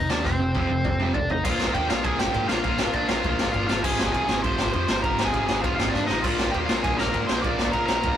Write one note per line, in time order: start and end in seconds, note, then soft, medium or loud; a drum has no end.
0.00 0.11 D#5 medium
0.10 0.22 D#2 medium
0.10 0.24 F2 medium
0.10 0.24 C3 medium
0.10 0.25 F3 medium
0.10 0.24 D4 medium
0.10 0.24 D5 medium
0.10 snare loud
0.24 0.37 F1 medium
0.24 0.39 F2 medium
0.24 0.39 C3 medium
0.24 1.11 C4 medium
0.24 1.11 C5 medium
0.24 kick loud
0.24 snare medium
0.40 0.53 F1 medium
0.40 0.54 F2 medium
0.40 0.54 C3 medium
0.54 0.67 F1 medium
0.54 0.69 F2 medium
0.54 0.69 C3 medium
0.54 0.70 F3 loud
0.54 kick loud
0.54 high tom medium
0.69 0.82 F1 medium
0.69 0.84 F2 medium
0.69 0.84 C3 medium
0.84 0.97 F1 loud
0.84 0.99 F2 medium
0.84 0.99 C3 medium
0.84 kick loud
0.84 mid tom medium
0.99 1.12 F1 medium
0.99 1.14 F2 medium
0.99 1.15 C3 medium
0.99 1.15 F3 medium
0.99 mid tom medium
1.14 1.40 A1 medium
1.14 1.29 F2 medium
1.14 1.29 C3 medium
1.14 1.29 D4 medium
1.14 1.30 D5 medium
1.14 kick loud
1.14 floor tom medium
1.30 1.44 F2 medium
1.30 1.44 C3 medium
1.30 1.45 D#4 medium
1.30 1.46 D#5 medium
1.30 floor tom medium
1.44 1.54 A#1 loud
1.44 1.61 A#2 medium
1.44 1.61 F3 loud
1.44 1.60 A#3 loud
1.44 1.74 F4 medium
1.44 1.74 F5 loud
1.44 kick loud
1.44 crash loud
1.60 1.69 A#1 loud
1.60 1.74 A#2 medium
1.60 1.75 F3 medium
1.60 1.75 A#3 loud
1.60 snare loud
1.67 kick medium
1.74 1.84 D#2 loud
1.74 1.90 A#2 medium
1.74 1.90 F3 loud
1.74 1.89 A#3 loud
1.74 1.89 G4 medium
1.74 1.89 G5 medium
1.74 kick loud
1.74 ride medium
1.89 2.00 A#1 medium
1.89 2.03 A#2 medium
1.89 2.05 F3 medium
1.89 2.04 A#3 medium
1.89 2.05 F4 medium
1.89 2.04 F5 medium
1.89 snare loud
2.04 2.14 A#1 loud
2.04 2.20 A#2 medium
2.04 2.20 F3 loud
2.04 2.19 A#3 medium
2.04 2.19 G#4 medium
2.04 2.19 G#5 medium
2.04 kick loud
2.04 ride medium
2.19 2.30 A#1 loud
2.19 2.34 A#2 medium
2.19 2.35 F3 medium
2.19 2.35 A#3 medium
2.19 2.49 G4 medium
2.19 2.48 G5 loud
2.19 snare loud
2.27 kick medium
2.34 2.44 G#2 medium
2.34 2.50 A#2 loud
2.34 2.50 F3 loud
2.34 2.49 A#3 loud
2.34 kick loud
2.34 ride medium
2.49 2.59 A#1 medium
2.49 2.63 A#2 medium
2.49 2.65 F3 medium
2.49 2.65 A#3 medium
2.49 2.64 F4 medium
2.49 2.63 F5 medium
2.49 snare loud
2.64 2.73 A#1 medium
2.64 2.80 A#2 loud
2.64 2.80 F3 loud
2.64 2.78 A#3 loud
2.64 2.93 F4 medium
2.64 2.95 F5 loud
2.64 kick loud
2.64 ride medium
2.78 2.88 A#1 medium
2.78 2.93 A#2 medium
2.78 2.94 F3 medium
2.78 2.94 A#3 loud
2.78 snare loud
2.87 kick medium
2.93 3.03 A#1 loud
2.93 3.09 A#2 loud
2.93 3.09 F3 loud
2.93 3.08 A#3 loud
2.93 3.09 D4 medium
2.93 3.10 D5 medium
2.93 kick loud
2.93 ride medium
3.08 3.19 A#1 medium
3.08 3.23 A#2 medium
3.08 3.25 F3 medium
3.08 3.25 A#3 medium
3.08 3.52 F4 medium
3.08 3.51 F5 loud
3.08 snare loud
3.24 3.34 D2 loud
3.24 3.40 A#2 medium
3.24 3.40 F3 loud
3.24 3.38 A#3 loud
3.24 kick loud
3.24 ride medium
3.39 3.49 A#1 medium
3.39 3.53 A#2 medium
3.39 3.54 F3 medium
3.39 3.54 A#3 medium
3.39 snare loud
3.47 kick medium
3.52 3.63 G1 medium
3.52 3.68 A#2 loud
3.52 3.70 F3 medium
3.52 3.69 A#3 loud
3.52 3.69 F4 medium
3.52 3.66 F5 medium
3.52 kick medium
3.52 ride medium
3.67 3.79 G#1 medium
3.67 3.84 F2 medium
3.67 3.84 C3 medium
3.67 3.84 F3 loud
3.67 3.84 F4 medium
3.67 3.83 F5 loud
3.67 snare loud
3.83 3.94 G#1 loud
3.83 3.97 F2 medium
3.83 3.98 C3 loud
3.83 3.99 F3 loud
3.83 4.13 G#4 medium
3.83 4.11 G#5 loud
3.83 kick loud
3.83 crash loud
3.98 4.08 G#1 medium
3.98 4.13 F2 loud
3.98 4.13 C3 medium
3.98 4.13 F3 loud
3.98 snare loud
4.07 kick medium
4.13 4.24 C2 medium
4.13 4.27 F2 medium
4.13 4.28 C3 loud
4.13 4.29 F3 loud
4.13 4.43 G#4 medium
4.13 4.41 G#5 medium
4.13 kick medium
4.13 ride medium
4.28 4.38 G#1 medium
4.28 4.43 F2 medium
4.28 4.43 C3 medium
4.28 4.43 F3 loud
4.28 snare loud
4.43 4.53 G#1 medium
4.43 4.57 F2 medium
4.43 4.58 C3 medium
4.43 4.59 F3 loud
4.43 4.73 C5 medium
4.43 4.72 C6 loud
4.43 kick loud
4.43 ride medium
4.58 4.68 G#1 loud
4.58 4.74 F2 medium
4.58 4.73 C3 medium
4.58 4.73 F3 loud
4.58 snare loud
4.66 kick medium
4.73 4.83 F2 medium
4.73 4.88 F2 loud
4.73 4.88 C3 loud
4.73 4.90 F3 loud
4.73 5.03 C5 medium
4.73 5.02 C6 medium
4.73 kick medium
4.73 ride medium
4.88 4.98 G#1 medium
4.88 5.04 F2 medium
4.88 5.03 C3 medium
4.88 5.03 F3 medium
4.88 snare loud
5.03 5.13 G#1 loud
5.03 5.18 F2 medium
5.03 5.18 C3 loud
5.03 5.20 F3 loud
5.03 5.26 A#4 medium
5.03 5.27 A#5 loud
5.03 kick loud
5.03 ride medium
5.18 5.28 G#1 loud
5.18 5.33 F2 medium
5.18 5.33 C3 loud
5.18 5.33 F3 medium
5.18 snare loud
5.25 5.48 G#4 medium
5.25 5.46 G#5 loud
5.25 kick medium
5.33 5.43 G#1 loud
5.33 5.47 F2 medium
5.33 5.48 C3 loud
5.33 5.49 F3 loud
5.33 kick loud
5.33 ride medium
5.47 5.58 G#1 medium
5.47 5.63 F2 medium
5.47 5.62 C3 loud
5.47 5.63 F3 medium
5.47 5.63 G#4 medium
5.47 5.61 G#5 loud
5.47 snare loud
5.61 5.73 A#1 loud
5.61 5.77 F2 medium
5.61 5.78 C3 loud
5.61 5.80 F3 loud
5.61 5.78 F4 medium
5.61 5.75 F5 medium
5.61 kick loud
5.61 ride medium
5.76 5.88 G#1 medium
5.76 5.93 F2 medium
5.76 5.93 C3 medium
5.76 5.93 F4 medium
5.76 5.93 F5 medium
5.76 snare loud
5.80 5.93 F3 medium
5.87 6.06 D5 medium
5.87 kick medium
5.93 6.07 F2 medium
5.93 6.03 G#2 medium
5.93 6.08 C3 medium
5.93 6.09 F3 loud
5.93 6.08 D4 medium
5.93 kick medium
5.93 snare medium
6.06 6.24 A1 medium
6.06 6.23 F2 medium
6.06 6.23 C3 medium
6.06 6.24 F3 medium
6.06 6.23 D#4 medium
6.06 6.23 D#5 loud
6.06 snare medium
6.21 6.33 A#1 loud
6.21 6.40 A#2 medium
6.21 6.39 F3 medium
6.21 6.52 F4 medium
6.21 6.51 F5 medium
6.21 kick loud
6.21 crash loud
6.25 6.38 A#3 loud
6.39 6.49 A#1 medium
6.39 6.53 A#2 medium
6.39 6.54 F3 medium
6.39 6.54 A#3 loud
6.39 snare loud
6.47 kick medium
6.51 6.63 D#2 loud
6.51 6.69 A#2 loud
6.51 6.69 F3 loud
6.51 6.59 G4 medium
6.51 6.56 G5 loud
6.51 kick loud
6.51 ride medium
6.56 6.68 A#3 loud
6.66 6.78 A#1 medium
6.66 6.85 A#3 medium
6.66 6.83 F4 medium
6.66 6.83 F5 loud
6.66 snare loud
6.70 6.83 A#2 medium
6.70 6.85 F3 medium
6.83 6.93 A#1 medium
6.83 7.00 A#2 medium
6.83 7.00 F3 loud
6.83 6.99 A#3 loud
6.83 6.99 G#4 medium
6.83 6.97 G#5 medium
6.83 kick loud
6.83 ride medium
6.97 7.08 A#1 medium
6.97 7.15 F3 medium
6.97 7.15 A#3 medium
6.97 7.27 A#4 medium
6.97 7.27 A#5 loud
6.97 snare loud
7.01 7.13 A#2 medium
7.07 kick medium
7.14 7.23 G#2 loud
7.14 7.30 A#2 loud
7.14 7.30 F3 loud
7.14 7.29 A#3 loud
7.14 kick medium
7.14 ride medium
7.27 7.38 A#1 medium
7.27 7.44 A#2 medium
7.27 7.45 F3 medium
7.27 7.45 A#3 loud
7.27 7.44 C5 medium
7.27 7.42 C6 loud
7.27 snare loud
7.42 7.53 A#1 loud
7.42 7.61 A#2 loud
7.42 7.60 F3 loud
7.42 7.73 D5 medium
7.42 7.71 D6 loud
7.42 kick loud
7.42 ride medium
7.46 7.59 A#3 loud
7.59 7.69 A#1 medium
7.59 7.74 A#2 medium
7.59 7.75 F3 medium
7.59 7.75 A#3 medium
7.59 snare loud
7.66 kick medium
7.72 7.83 A#1 loud
7.72 7.90 A#2 loud
7.72 7.90 F3 loud
7.72 7.88 A#4 medium
7.72 7.85 A#5 loud
7.72 kick loud
7.72 ride medium
7.76 7.89 A#3 loud
7.86 7.98 A#1 medium
7.86 8.05 A#3 loud
7.86 8.17 A#4 medium
7.86 8.17 A#5 loud
7.86 snare loud
7.91 8.04 A#2 medium
7.91 8.06 F3 medium
8.03 8.13 D2 loud
8.03 8.17 A#2 medium
8.03 8.17 F3 medium
8.03 8.17 A#3 loud
8.03 kick loud
8.03 ride medium